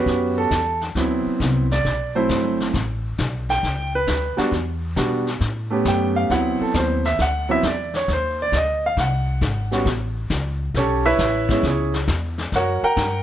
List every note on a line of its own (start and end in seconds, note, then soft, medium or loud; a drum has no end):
0.00 0.49 B3 medium
0.00 0.49 C#4 medium
0.00 0.49 F#4 medium
0.00 0.48 G4 medium
0.00 0.35 B4 medium
0.06 0.50 F#2 medium
0.06 brush sweep soft
0.06 kick soft
0.06 snare soft
0.38 0.79 A4 medium
0.51 0.94 E2 medium
0.51 kick soft
0.51 snare medium
0.51 hi-hat pedal medium
0.81 snare soft
0.95 1.24 D2 medium
0.95 1.65 F#3 medium
0.95 1.65 B3 medium
0.95 1.65 C4 medium
0.95 1.66 E4 medium
0.95 brush sweep soft
0.95 kick soft
0.95 snare soft
1.26 muted upright bass stroke soft
1.40 1.84 C2 medium
1.40 kick soft
1.40 snare medium
1.40 hi-hat pedal soft
1.71 2.13 D5 medium
1.71 snare soft
1.85 2.28 B1 medium
1.85 brush sweep soft
1.85 kick soft
1.85 snare soft
2.15 2.71 F#3 medium
2.15 2.72 A3 medium
2.15 2.72 C4 soft
2.15 2.72 E4 medium
2.15 2.57 C5 medium
2.29 2.73 G1 medium
2.29 kick soft
2.29 snare medium
2.29 hi-hat pedal medium
2.60 snare soft
2.74 3.17 A1 medium
2.74 brush sweep soft
2.74 kick soft
2.74 snare soft
3.18 3.62 B1 medium
3.18 kick soft
3.18 snare medium
3.18 hi-hat pedal soft
3.49 3.91 G5 medium
3.49 snare soft
3.63 4.06 C#2 medium
3.63 brush sweep soft
3.63 kick soft
3.63 snare soft
3.95 4.36 B4 medium
4.07 4.36 D2 medium
4.07 kick soft
4.07 snare medium
4.07 hi-hat pedal soft
4.37 4.50 G3 medium
4.37 4.51 B3 medium
4.37 4.51 D4 medium
4.37 4.51 F#4 medium
4.37 muted upright bass stroke soft
4.37 snare soft
4.52 4.95 E2 medium
4.52 brush sweep soft
4.52 kick soft
4.52 snare soft
4.96 5.40 B2 medium
4.96 5.24 G3 medium
4.96 5.24 B3 soft
4.96 5.24 D4 soft
4.96 5.25 F#4 medium
4.96 kick soft
4.96 snare medium
4.96 hi-hat pedal medium
5.27 snare soft
5.40 5.84 A2 medium
5.40 brush sweep soft
5.40 kick soft
5.40 snare soft
5.70 6.27 A3 medium
5.70 6.27 B3 medium
5.70 6.28 C#4 medium
5.70 6.28 G4 medium
5.85 6.29 F#2 medium
5.85 6.16 G5 medium
5.85 kick soft
5.85 snare medium
5.85 hi-hat pedal soft
6.16 6.30 F5 medium
6.30 6.58 D2 medium
6.30 6.99 F#3 medium
6.30 6.99 B3 medium
6.30 7.00 C4 soft
6.30 7.00 E4 medium
6.30 6.60 F#5 medium
6.30 brush sweep soft
6.30 kick soft
6.30 snare soft
6.60 6.75 A4 medium
6.60 muted upright bass stroke soft
6.74 7.18 D#2 medium
6.74 7.05 C5 medium
6.74 kick soft
6.74 snare medium
6.74 hi-hat pedal medium
7.05 7.19 E5 medium
7.05 snare soft
7.19 7.62 D2 medium
7.19 7.50 F#5 medium
7.19 brush sweep soft
7.19 kick soft
7.19 snare soft
7.49 7.62 F#3 medium
7.49 7.62 B3 medium
7.49 7.63 C4 medium
7.49 7.63 E4 medium
7.49 7.64 E5 medium
7.63 8.07 E2 medium
7.63 kick soft
7.63 snare medium
7.63 hi-hat pedal soft
7.67 7.95 D5 medium
7.93 8.09 C#5 medium
7.93 snare soft
8.08 8.51 D#2 medium
8.08 brush sweep soft
8.08 kick soft
8.08 snare soft
8.13 8.40 C5 medium
8.42 8.54 D5 medium
8.52 8.96 D2 medium
8.52 kick soft
8.52 snare medium
8.52 hi-hat pedal soft
8.57 8.84 D#5 medium
8.86 8.98 F5 medium
8.97 9.40 C2 medium
8.97 9.84 F#5 medium
8.97 brush sweep soft
8.97 kick soft
8.97 snare soft
9.41 9.85 G#1 medium
9.41 kick soft
9.41 snare medium
9.41 hi-hat pedal medium
9.71 9.84 G3 medium
9.71 9.85 B3 soft
9.71 9.85 C#4 soft
9.71 9.85 F#4 medium
9.71 snare soft
9.85 10.29 A1 medium
9.85 brush sweep soft
9.85 kick soft
9.85 snare soft
10.30 10.73 C#2 medium
10.30 kick soft
10.30 snare soft
10.30 hi-hat pedal soft
10.74 11.18 B1 medium
10.74 11.06 C#4 medium
10.74 11.06 G4 medium
10.74 11.06 A4 medium
10.74 11.05 C#5 medium
10.74 brush sweep soft
10.74 kick soft
10.74 snare soft
11.06 11.50 E4 medium
11.06 11.60 B4 medium
11.06 11.60 C#5 medium
11.06 11.60 E5 loud
11.18 11.62 A1 medium
11.18 kick soft
11.18 snare medium
11.18 hi-hat pedal medium
11.49 11.62 G#3 medium
11.49 11.63 B3 medium
11.49 11.63 C#4 medium
11.49 11.63 E4 medium
11.49 kick soft
11.49 snare soft
11.63 12.07 C#2 medium
11.63 brush sweep soft
11.63 kick soft
11.63 snare soft
11.67 11.95 C#4 medium
11.67 11.95 E4 medium
11.67 11.95 G#4 medium
11.67 11.95 C#5 medium
11.94 snare medium
12.07 12.51 E2 medium
12.07 kick soft
12.07 snare medium
12.07 hi-hat pedal medium
12.38 snare soft
12.52 12.81 F#2 medium
12.52 12.83 F#4 medium
12.52 12.83 A#4 medium
12.52 12.84 C#5 medium
12.52 12.83 F#5 medium
12.52 brush sweep soft
12.52 kick soft
12.52 snare soft
12.83 13.23 A#4 medium
12.83 13.23 F#5 medium
12.83 13.23 G5 medium
12.83 13.23 A#5 loud
12.83 muted upright bass stroke soft
12.96 13.23 G2 medium
12.96 kick soft
12.96 snare medium
12.96 hi-hat pedal soft